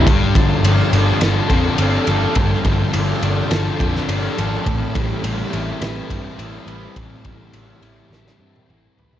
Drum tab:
RD |x-x-x-x-x-x-x-x-|x-x-x-x-x-x-x-x-|x-x-x-x-x-x-x-x-|x-x-x-x---------|
SD |--------o-------|--------o--o----|--------o-------|--------oo------|
T1 |----------------|----------------|----------------|-----------o----|
T2 |----------------|----------------|----------------|------------o---|
FT |----------------|----------------|----------------|--------------oo|
BD |o-o-------o-----|o-o-------o-----|o-o-------o-----|o-o-------------|